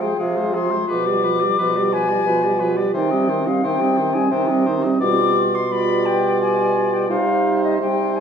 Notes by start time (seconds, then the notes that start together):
Already playing: C3
0.00 G#3 G#4 C5 G5
0.16 F3 F4 G#4 F5
0.21 C3
0.36 G#3 G#4 C5
0.53 F3 F4 G#4 C6
0.71 G#3 C5
0.75 G#4
0.87 B2 F3 F4 B4 D6
1.06 G3 G4 D5
1.23 F3 F4 B4
1.40 G3 G4 D5
1.58 B2 F3 F4 B4
1.75 G3 G4 D5
1.92 F3 F4 B4 G#5
2.09 G3 G4 D5
2.26 B2 F3 F4 B4
2.43 G3 G4 D5
2.60 F3 F4 B4
2.77 G3 G4 D5
2.94 C3 D#3 D#4 C5 G5
3.10 G3 C4 D#5
3.29 D#3 D#4 C5
3.46 G3 C4 D#5 F5
3.63 C3 D#3 D#4 C5 G5
3.81 G3 C4 D#5
3.97 D#3 D#4 C5
4.14 G3 C4 D#5 G#5
4.30 C3 D#3 D#4 C5 G5
4.48 G3 C4 D#5
4.66 D#3 D#4 C5
4.83 G3 C4 D#5
5.00 B2 G3 F4 D5 D6
5.55 C6
5.71 G3 F4 D5 B5
6.06 G5
6.41 G#5
6.93 G5
7.09 C3 G3 D#4 C5 F5
7.64 D#5
7.80 G3 D#4 C5 G5
8.16 G#5